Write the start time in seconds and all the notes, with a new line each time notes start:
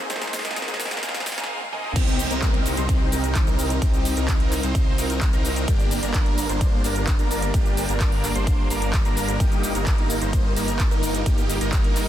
Already playing: G#3 A#3 C4, riser
0.10 G#1 A#3 C4 D#4 G#4 C5, snare, closed hi-hat, shaker
0.16 snare
0.22 snare, closed hi-hat, shaker
0.27 snare
0.33 snare, open hi-hat, shaker
0.39 snare
0.45 G#1 A#3 C4 D#4 G#4 D#5, snare, closed hi-hat, shaker
0.51 snare
0.56 snare, closed hi-hat, shaker
0.62 snare
0.68 snare, closed hi-hat, shaker
0.74 snare
0.80 snare, open hi-hat, shaker
0.85 snare
0.91 G#1 A#3 C4 D#4 G#4 F5, snare, closed hi-hat, shaker
0.97 snare
1.03 snare, closed hi-hat, shaker
1.09 snare
1.15 snare, closed hi-hat, shaker
1.20 snare
1.26 snare, open hi-hat, shaker
1.32 snare
1.38 G#1 A#3 C4 D#4 G#4 F5, snare, closed hi-hat, shaker
1.44 snare
1.61 high tom
1.73 A#3 C4 D#4 G#4 D#5, mid tom
1.84 mid tom
1.96 C2 C3 C4 D#4 G4, kick, closed hi-hat, ride, crash, downlifter, shaker
2.08 closed hi-hat, shaker
2.19 open hi-hat, shaker
2.31 C2 C4 D#4 A#4, closed hi-hat, shaker
2.42 kick, clap, closed hi-hat, ride, shaker
2.54 closed hi-hat
2.66 open hi-hat, shaker
2.77 C2 C4 D#4 C5, closed hi-hat, shaker
2.89 kick, closed hi-hat, ride, shaker
3.12 C2 C4 D#4 A#4, open hi-hat, shaker
3.24 closed hi-hat, shaker
3.35 kick, clap, closed hi-hat, ride, shaker
3.47 C2 C4 D#4 A#4, closed hi-hat, shaker
3.59 open hi-hat, shaker
3.70 closed hi-hat, shaker
3.82 C2 C4 D#4 F4 G4, kick, closed hi-hat, ride, shaker
3.94 closed hi-hat, shaker
4.05 open hi-hat, shaker
4.17 C2 C4 D#4 A#4, closed hi-hat, shaker
4.28 kick, clap, closed hi-hat, ride, shaker
4.40 closed hi-hat
4.52 clap, open hi-hat, shaker
4.63 C2 C4 D#4 C5, closed hi-hat, shaker
4.75 kick, closed hi-hat, ride, shaker
4.98 C2 C4 D#4 A#4, open hi-hat, shaker
5.10 closed hi-hat, shaker
5.21 kick, clap, closed hi-hat, ride, shaker
5.33 C2 C4 D#4 A#4, closed hi-hat, shaker
5.45 open hi-hat, shaker
5.56 closed hi-hat, shaker
5.68 G1 G3 A#3 D4 G4, kick, closed hi-hat, ride, shaker
5.80 closed hi-hat, shaker
5.91 open hi-hat, shaker
6.03 G1 A#3 D4 A#4, closed hi-hat, shaker
6.14 kick, clap, closed hi-hat, ride, shaker
6.26 closed hi-hat
6.38 open hi-hat, shaker
6.49 G1 A#3 D4 C5, closed hi-hat, shaker
6.61 kick, closed hi-hat, ride, shaker
6.84 G1 A#3 D4 A#4, open hi-hat, shaker
6.96 closed hi-hat, shaker
7.07 kick, clap, closed hi-hat, ride, shaker
7.19 G1 A#3 D4 A#4, closed hi-hat, shaker
7.31 open hi-hat, shaker
7.42 closed hi-hat, shaker
7.54 G1 A#3 D4 G4, kick, closed hi-hat, ride, shaker
7.66 closed hi-hat, shaker
7.77 open hi-hat, shaker
7.89 G1 A#3 D4 A#4, closed hi-hat, shaker
8.00 kick, clap, closed hi-hat, ride, shaker
8.12 open hi-hat
8.24 clap, open hi-hat, shaker
8.35 G1 A#3 D4 C5, closed hi-hat, shaker
8.47 kick, closed hi-hat, ride, shaker
8.70 G1 A#3 D4 A#4, open hi-hat, shaker
8.82 closed hi-hat, shaker
8.93 kick, clap, closed hi-hat, ride, shaker
9.05 G1 A#3 D4 A#4, closed hi-hat, shaker
9.17 open hi-hat, shaker
9.29 closed hi-hat, shaker
9.40 G1 A#3 D#4 G4, kick, closed hi-hat, ride, shaker
9.52 closed hi-hat, shaker
9.63 open hi-hat, shaker
9.75 G1 A#3 D#4 A#4, closed hi-hat, shaker
9.87 kick, clap, closed hi-hat, ride, shaker
9.98 closed hi-hat
10.10 open hi-hat, shaker
10.21 G1 A#3 D#4 C5, closed hi-hat, shaker
10.33 kick, closed hi-hat, ride, shaker
10.56 G1 A#3 D#4 A#4, open hi-hat, shaker
10.68 closed hi-hat, shaker
10.79 kick, clap, closed hi-hat, ride, shaker
10.91 G1 A#3 D#4 A#4, closed hi-hat, shaker
11.03 open hi-hat, shaker
11.15 closed hi-hat, shaker
11.26 G1 A#3 D#4 G4, kick, closed hi-hat, ride, shaker
11.38 closed hi-hat, shaker
11.49 open hi-hat, shaker
11.61 G1 A#3 D#4 A#4, closed hi-hat, shaker
11.73 kick, clap, closed hi-hat, ride, shaker
11.84 closed hi-hat
11.96 clap, open hi-hat, shaker